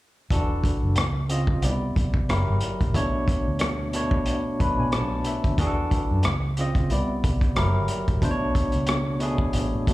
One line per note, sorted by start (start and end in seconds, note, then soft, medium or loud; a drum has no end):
0.30 0.59 E1 medium
0.30 0.97 E3 medium
0.30 0.97 D4 medium
0.30 0.98 F#4 medium
0.30 0.98 A4 medium
0.30 kick medium
0.30 closed hi-hat medium
0.64 kick medium
0.64 closed hi-hat medium
0.83 0.95 F#1 medium
0.96 1.54 C#2 medium
0.96 cross-stick medium
0.96 closed hi-hat medium
1.29 1.62 C#3 medium
1.29 1.63 C4 medium
1.29 1.63 F4 medium
1.29 1.63 D#5 medium
1.29 closed hi-hat medium
1.47 kick medium
1.62 1.91 C2 medium
1.62 2.18 C3 medium
1.62 2.18 B3 medium
1.62 1.71 D#4 medium
1.62 2.19 D5 medium
1.62 closed hi-hat medium
1.70 2.22 E4 medium
1.96 2.24 B1 medium
1.96 kick medium
1.96 closed hi-hat soft
2.14 kick medium
2.29 2.45 F#1 medium
2.29 2.84 F#3 medium
2.29 2.85 E4 medium
2.29 2.85 G4 medium
2.29 2.85 A#4 medium
2.29 cross-stick medium
2.29 closed hi-hat medium
2.48 2.60 G1 medium
2.61 closed hi-hat medium
2.81 2.95 A#1 medium
2.81 kick medium
2.81 closed hi-hat soft
2.94 3.23 B1 medium
2.94 3.77 B2 medium
2.94 3.77 A3 medium
2.94 3.77 D4 medium
2.94 3.78 C#5 loud
2.94 kick medium
2.94 closed hi-hat medium
3.28 kick medium
3.28 closed hi-hat medium
3.48 4.42 D2 medium
3.59 cross-stick loud
3.59 closed hi-hat medium
3.93 4.49 B2 medium
3.93 4.49 A3 medium
3.93 4.50 D4 medium
3.93 4.50 C#5 medium
3.93 closed hi-hat medium
4.11 kick medium
4.26 closed hi-hat medium
4.60 4.76 B1 medium
4.60 5.42 B2 medium
4.60 5.42 A3 medium
4.60 5.43 D4 medium
4.60 5.43 B4 medium
4.60 4.78 B5 medium
4.60 kick medium
4.60 closed hi-hat medium
4.80 4.95 B2 medium
4.80 4.92 G#5 medium
4.92 5.21 B1 medium
4.92 5.24 A5 medium
4.92 cross-stick medium
4.92 closed hi-hat medium
5.24 5.57 E5 medium
5.24 closed hi-hat medium
5.44 5.59 D2 medium
5.44 kick medium
5.44 closed hi-hat soft
5.58 5.87 E2 medium
5.58 6.24 E3 loud
5.58 6.25 D4 medium
5.58 6.25 F#4 medium
5.58 5.67 G#4 medium
5.58 kick medium
5.58 closed hi-hat medium
5.67 6.29 A4 loud
5.91 kick medium
5.91 closed hi-hat medium
6.11 6.23 F#2 medium
6.23 6.82 C#2 medium
6.23 cross-stick medium
6.23 closed hi-hat medium
6.57 6.91 C#3 medium
6.57 6.91 C4 medium
6.57 6.91 F4 medium
6.57 6.92 D#5 medium
6.57 closed hi-hat medium
6.75 kick medium
6.75 closed hi-hat soft
6.90 7.24 C2 medium
6.90 7.45 C3 medium
6.90 7.46 B3 medium
6.90 7.46 E4 medium
6.90 7.47 D5 medium
6.90 closed hi-hat medium
7.24 7.52 B1 medium
7.24 kick medium
7.24 closed hi-hat medium
7.41 kick medium
7.41 closed hi-hat soft
7.55 7.76 F#1 medium
7.55 8.11 F#3 medium
7.55 8.12 E4 medium
7.55 8.12 G4 medium
7.55 8.12 A#4 medium
7.55 cross-stick medium
7.55 closed hi-hat medium
7.76 7.88 G1 medium
7.88 closed hi-hat medium
8.08 8.20 A#1 medium
8.08 kick medium
8.08 closed hi-hat soft
8.22 8.50 B1 medium
8.22 9.04 B2 loud
8.22 9.05 A3 medium
8.22 9.05 D4 medium
8.22 8.30 C5 medium
8.22 kick medium
8.22 closed hi-hat medium
8.31 9.09 C#5 loud
8.55 kick medium
8.55 closed hi-hat medium
8.72 9.50 C#2 medium
8.72 closed hi-hat soft
8.87 cross-stick loud
8.87 closed hi-hat medium
9.20 9.76 B2 medium
9.20 9.76 A3 medium
9.20 9.77 D4 medium
9.20 9.77 G#4 medium
9.20 closed hi-hat medium
9.38 kick medium
9.53 9.70 A1 medium
9.53 closed hi-hat medium
9.74 9.86 A2 medium
9.87 9.94 B2 medium
9.87 9.94 A3 medium
9.87 9.94 D4 medium
9.87 9.94 F#4 medium
9.87 kick medium
9.87 closed hi-hat medium